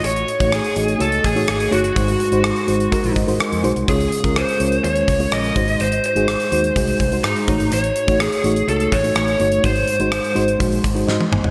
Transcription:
<<
  \new Staff \with { instrumentName = "Lead electric guitar" } { \time 4/4 \key aes \mixolydian \tempo 4 = 125 des''4 aes'4 a'8 aes'8 aes'8 ges'8~ | ges'2~ ges'8 r4. | aes'4 c''4 des''4 ees''4 | c''8 c''2~ c''8 ees'4 |
des''4 aes'4 a'8 des''8 des''4 | c''2 r2 | }
  \new Staff \with { instrumentName = "FM electric piano" } { \time 4/4 \key aes \mixolydian <a ees' ges' des''>8 r16 <a ees' ges' des''>8. <a ees' ges' ees''>8 <a ees' ges' des''>8. <a ees' ges' des''>8. <a ees' ges' des''>8 | <aes ees' ges' c''>8. <aes ees' ges' c''>8. <aes ees' ges' c''>8 <aes ees' ges' bes'>8. <aes ees' ges' c''>8. <aes ees' ges' c''>8 | <aes des' f' des''>8. <aes des' f' bes'>8. <aes des' f' des''>8 <aes des' f' des''>8. <aes des' f' des''>8. <aes ees' ges' c''>8~ | <aes ees' ges' c''>8 r16 <aes ees' ges' aes'>8. <aes ees' ges' c''>8 <aes ees' ges' aes'>8. <aes ees' ges' c''>8. <a ees' ges' des''>8~ |
<a ees' ges' des''>8 r16 <a ees' ges' des''>8. <a ees' ges' des''>8 <a ees' ges' des''>8. <a ees' ges' des''>8. <a ees' ges' des''>8 | <aes ees' ges' c''>8. <aes ees' ges' c''>8. <aes ees' ges' c''>8 <aes ees' ges' c''>8. <aes ees' ges' c''>8. r8 | }
  \new Staff \with { instrumentName = "FM electric piano" } { \time 4/4 \key aes \mixolydian a,4 r2. | aes,4. r4 ees''8 aes''4 | des4. r2 aes,8~ | aes,4 r2 r8 a,8~ |
a,4 r2. | aes,4. r4. <ges' ees''>8 <c'' aes''>8 | }
  \new Staff \with { instrumentName = "Fingered electric bass" } { \clef bass \time 4/4 \key aes \mixolydian a,,8 r16 a,,8 r16 a,,8 des,8 a,,8 aes,,8 g,,8 | aes,,8 r16 aes,,8 r16 aes,,8 r16 bes,,16 aes,,16 aes,,16 r16 f,16 ces,16 c,16 | des,8 r16 des,8 r16 des,8 ees,8 des,8 bes,,8 aes,,8 | aes,,8 r16 aes,,8 r16 ees,8 c,8 c,8 aes,16 r16 a,,16 aes,,16 |
a,,8 r16 a,,8 r16 a,,8 des,8 a,,8 a,,8 g,,8 | aes,,8 r16 aes,,8 r16 aes,,8 bes,,8 aes,,8 aes,16 r16 aes,,16 g,,16 | }
  \new DrumStaff \with { instrumentName = "Drums" } \drummode { \time 4/4 hh16 hh16 hh16 <hh bd>16 <hh ss>16 hh16 hh16 hh16 hh16 hh16 <hh bd>16 hh16 <hh ss>16 hh16 hh16 hh16 | <hh bd>16 hh16 hh16 hh16 <hh ss>16 hh16 hh16 hh16 <hh bd>16 hh16 <hh bd>16 hh16 <hh ss>16 hh16 hh16 hh16 | <hh bd>16 hh16 hh16 <hh bd>16 <hh ss>16 hh16 hh16 hh16 hh16 hh16 <hh bd>16 hh16 <hh ss>16 hh16 <hh bd>16 hh16 | hh16 hh16 hh16 hh16 <hh ss>16 hh16 hh16 hh16 <hh bd>16 hh16 <hh bd>16 hh16 <hh ss>16 hh16 <hh bd>16 hh16 |
hh16 hh16 hh16 <hh bd>16 <hh ss>16 hh16 hh16 hh16 hh16 hh16 <hh bd>16 hh16 <hh ss>16 hh16 hh16 hh16 | <hh bd>16 hh16 hh16 hh16 <hh ss>16 hh16 hh16 hh16 <hh bd>16 hh16 <hh bd>16 hh16 sn16 tommh16 toml16 tomfh16 | }
>>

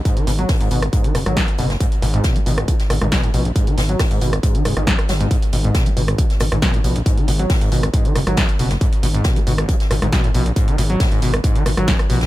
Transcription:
<<
  \new Staff \with { instrumentName = "Acid bass" } { \clef bass \time 4/4 \key gis \minor \tempo 4 = 137 gis,16 dis16 b,16 fis16 gis,16 gis,16 b,16 gis,,16 gis,16 dis16 b,16 fis16 gis,16 r16 b,16 gis,,16 | gis,16 r16 b,16 gis,16 b,16 b16 b,16 gis,,16 gis16 r16 b,16 gis,16 b,16 gis,16 b,16 gis,,16 | gis,16 dis16 b,16 fis16 gis,16 gis,16 b,16 gis,,16 gis,16 dis16 gis,16 dis16 gis,16 r16 fis16 gis,16 | r8 b,16 gis,16 b,16 b16 b,16 gis,,16 gis16 r16 b,16 gis,16 b,16 gis,16 b,16 gis,,16 |
gis,16 dis16 b,16 fis16 gis,16 gis,16 b,16 gis,,16 gis,16 dis16 b,16 fis16 gis,16 r16 b,16 gis,,16 | gis,16 r16 b,16 gis,16 b,16 b16 b,16 gis,,16 gis16 r16 b,16 gis,16 b,16 gis,16 b,16 gis,,16 | gis,16 dis16 b,16 fis16 gis,16 gis,16 b,16 gis,,16 gis,16 dis16 b,16 fis16 gis,16 r16 b,16 gis,,16 | }
  \new Staff \with { instrumentName = "Analog synth bass" } { \clef bass \time 4/4 \key gis \minor r8 gis,,8 r8 gis,,8 r8 fis,,16 gis,,8 r16 fis,,8 | r8 gis,,8 r8 gis,,8 r8 gis,,16 gis,,8 r16 ais,,8 | r8 gis,,8 r8 gis,,8 r8 fis,,16 gis,,8 r16 gis,,8 | r8 gis,,8 r8 gis,,8 r8 gis,,16 gis,,8 r16 ais,,8 |
r8 gis,,8 r8 gis,,8 r8 fis,,16 gis,,8 r16 fis,,8 | r8 gis,,8 r8 gis,,8 r8 gis,,16 gis,,8 r16 ais,,8 | r8 gis,,8 r8 gis,,8 r8 gis,,16 gis,,8 r16 ais,,8 | }
  \new DrumStaff \with { instrumentName = "Drums" } \drummode { \time 4/4 <hh bd>16 hh16 <hh hho>16 hh16 <hh hho bd sn>16 hh16 <hh hho>16 <hh ss>16 <hh bd>16 hh16 <hh hho ss>16 <hh ss>16 <hh bd sn>16 hh16 <hh hho>16 <hh sn>16 | <hh bd>16 hh16 <hh hho>16 hh16 <hh bd sn>16 hh16 <hh hho>16 <hh ss>16 <hh bd>16 <hh sn>16 <hh hho ss>16 <hh ss>16 <hh bd sn>16 hh16 <hh hho>16 hh16 | <hh bd>16 hh16 <hh hho sn>16 hh16 <hh hho bd ss sn>16 hh16 <hh hho>16 <hh ss>16 <hh bd>16 hh16 <hh hho ss>16 <hh ss>16 <hh bd sn>16 <hh ss>16 <hh hho sn>16 hh16 | <hh bd>16 hh16 <hh hho>16 hh16 <hh bd sn>16 hh16 <hh hho>16 <hh ss>16 <hh bd>16 <hh sn>16 <hh hho ss>16 <hh ss>16 <hh bd sn>16 hh16 <hh hho>16 hh16 |
<hh bd>16 hh16 <hh hho>16 hh16 <hh hho bd sn>16 hh16 <hh hho>16 <hh ss>16 <hh bd>16 hh16 <hh hho ss>16 <hh ss>16 <hh bd sn>16 hh16 <hh hho>16 <hh sn>16 | <hh bd>16 hh16 <hh hho>16 hh16 <hh bd sn>16 hh16 <hh hho>16 <hh ss>16 <hh bd>16 <hh sn>16 <hh hho ss>16 <hh ss>16 <hh bd sn>16 hh16 <hh hho>16 hh16 | <hh bd>16 hh16 <hh hho>16 hh16 <hh hho bd sn>16 hh16 <hh hho>16 <hh ss>16 <hh bd>16 hh16 <hh hho ss>16 <hh ss>16 <hh bd sn>16 <hh ss>16 <hh hho>16 <hh sn>16 | }
>>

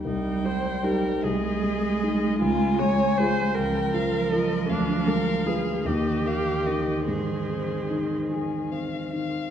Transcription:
<<
  \new Staff \with { instrumentName = "Violin" } { \time 6/8 \key aes \major \tempo 4. = 51 g''4. ees''4. | aes''4. g''8 f''8 ees''8 | f''4. ees''8 f''8 ees''8 | c''4. aes'8 f''8 f''8 | }
  \new Staff \with { instrumentName = "Viola" } { \time 6/8 \key aes \major ees'8 c''8 bes'8 aes'4. | f'8 des''8 c''8 bes'4. | d'8 bes'8 aes'8 g'4. | aes'4. r4. | }
  \new Staff \with { instrumentName = "Grand piano" } { \time 6/8 \key aes \major c,8 c'8 <ees' g'>8 c,8 aes8 <ees' aes'>8 | des,8 aes8 <f' aes'>8 des,8 f8 <f' bes'>8 | d,8 aes8 <f' b'>8 ees,8 bes8 <ees' bes'>8 | aes,8 c'8 ees'8 aes'8 c'8 ees8 | }
  \new Staff \with { instrumentName = "Cello" } { \clef bass \time 6/8 \key aes \major g4. aes4.~ | aes4. f4.~ | f4. ees4.~ | ees2~ ees8. r16 | }
>>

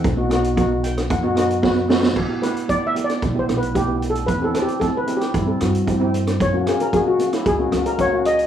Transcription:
<<
  \new Staff \with { instrumentName = "Steel pan" } { \time 4/4 \key b \phrygian \tempo 4 = 113 fis''2. r4 | \key c \lydian r8 b'8 \tuplet 3/2 { d''8 e''8 d''8~ d''8 c''8 b'8 g'4 a'8 } | \tuplet 3/2 { b'8 a'8 g'8 a'8 b'8 g'8 } e'4. r8 | cis''8. ais'16 gis'16 fis'8 e'16 gis'8. ais'16 cis''8 dis''8 | }
  \new Staff \with { instrumentName = "Steel pan" } { \time 4/4 \key b \phrygian << { r4. g''8 fis''8 dis''8 b'8 a'8 | \key c \lydian r1 | r1 | r1 | } \\ { r16 <b dis' fis'>16 <b dis' fis'>16 r16 <b dis' fis'>8. r8 <b dis' fis'>16 <b dis' fis'>16 r16 <b dis' fis'>16 r16 <b dis' fis'>8 | r16 <b e' g'>16 <b e' g'>16 r16 <b e' g'>16 r16 <b e' g'>8 r16 <b e' g'>16 <b e' g'>16 r16 <b e' g'>16 <b e' g'>8 r16 | r16 <c' e' g'>16 <c' e' a'>16 r16 <c' e' a'>16 r16 <c' e' g'>8 r16 <c' e' a'>16 <c' e' fis'>16 r16 <c' e' g'>16 <c' e' g'>8 r16 | r16 <ais cis' fis'>16 <ais cis' gis'>16 r16 <ais cis' fis'>16 r16 <ais cis' fis'>8 r16 <ais cis' fis'>16 <ais cis' fis'>16 r16 <ais cis' fis'>16 <ais cis' fis'>8 r16 | } >> }
  \new Staff \with { instrumentName = "Upright bass" } { \clef bass \time 4/4 \key b \phrygian b,,2 fis,2 | \key c \lydian e,8 r4. b,,8 b,,4. | e,8 r4. g,8 g,4. | fis,8 r4. cis,8 cis,4. | }
  \new DrumStaff \with { instrumentName = "Drums" } \drummode { \time 4/4 <hh bd>8 <hh ss>16 hh16 <hh bd>8 hh16 <hh ss>16 <hh bd>8 <hh ss>16 hh16 <bd sn>8 sn16 sn16 | <cymc bd>8 <hh ss>16 hh16 <hh bd>8 hh16 <hh ss>16 <hh bd>8 <hh ss>16 hh16 <hh bd>8 hh16 hh16 | <hh bd>8 <hh ss>16 hh16 <hh bd>8 hh16 <hh ss>16 <hh bd>8 <hh ss>16 hh16 <hh bd>8 hh16 <hh ss>16 | <hh bd>8 <hh ss>16 hh16 <hh bd>8 hh16 <hh ss>16 <hh bd>8 <hh ss>16 hh16 <hh bd>8 hh16 hh16 | }
>>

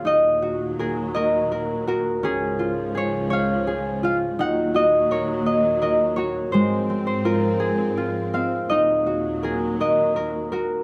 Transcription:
<<
  \new Staff \with { instrumentName = "Harp" } { \time 6/8 \key ees \dorian \tempo 4. = 56 << { ees''4 aes'8 bes'4 bes'8 | aes'4 des''8 f''4 f''8 | ges''8 ees''8 des''8 r8 ees''8 des''8 | c''8. c''16 bes'8 aes'4 f''8 |
ees''4 aes'8 bes'4 bes'8 | } \\ { ees'8 ges'8 bes'8 ees''8 bes'8 ges'8 | des'8 f'8 aes'8 des''8 aes'8 f'8 | ees'8 ges'8 bes'8 ees''8 bes'8 ges'8 | aes8 c'8 f'4 f'8 c'8 |
ees'8 ges'8 bes'8 ees''8 bes'8 ges'8 | } >> }
  \new Staff \with { instrumentName = "String section" } { \clef bass \time 6/8 \key ees \dorian <ees, bes, ges>2. | <des, aes, f>2. | <ees, bes, ges>2. | <aes, f c'>2. |
<ees, bes, ges>2. | }
>>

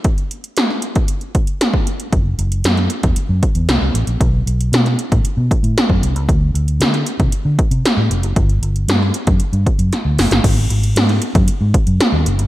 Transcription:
<<
  \new Staff \with { instrumentName = "Fingered electric bass" } { \clef bass \time 4/4 \key gis \phrygian \tempo 4 = 116 r1 | fis,,8 fis,,8 fis,8 r16 e,16 r16 fis,16 r16 e,16 c,16 c,16 a,,16 ais,,16 | b,,8 b,,8 b,8 r16 a,16 r16 b,16 r16 a,16 r16 fis,16 bis,,16 cis,16 | d,8 d,8 d8 r16 c16 r16 d16 r16 c16 r16 a,16 eis,,16 fis,,16 |
g,,8 g,,8 g,8 r16 fis,16 r16 g,16 r16 fis,16 r16 d,16 fis,,16 g,,16 | gis,,8 gis,,8 gis,8 r16 fis,16 r16 gis,16 r16 fis,16 r16 dis,16 fis,,16 g,,16 | }
  \new DrumStaff \with { instrumentName = "Drums" } \drummode { \time 4/4 <hh bd>16 hh16 hh16 hh16 <hh sn>16 sn16 hh16 <hh bd>16 hh16 hh16 <hh bd>16 hh16 <hh sn>16 bd16 hh16 hh16 | <hh bd>8 hh16 hh16 <hh sn>16 <hh sn>16 hh16 <hh bd>16 hh8 <hh bd>16 hh16 <hh sn>8 hh16 hh16 | <hh bd>8 hh16 hh16 <hh sn>16 <hh sn>16 hh16 <hh bd>16 hh8 <hh bd>16 hh16 <hh sn>16 bd16 hh16 hh16 | <hh bd>8 hh16 hh16 <hh sn>16 <hh sn>16 hh16 <hh bd>16 hh8 <hh bd>16 hh16 <hh sn>8 hh16 hh16 |
<hh bd>16 hh16 hh16 hh16 <hh sn>16 sn16 hh16 <hh bd>16 hh16 hh16 <hh bd>16 hh16 <hh sn>8 <hho sn>16 <hh sn>16 | <cymc hh bd>8 hh16 hh16 <hh sn>16 <hh sn>16 hh16 <hh bd>16 hh8 <hh bd>16 hh16 <hh sn>8 hh16 hh16 | }
>>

